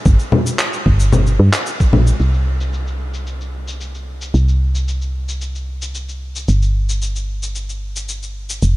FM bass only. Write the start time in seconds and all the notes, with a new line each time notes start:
0.06 G1
0.86 G1
1.39 G2
1.93 A#1
2.20 C2
4.34 C2
6.48 G1
8.63 F1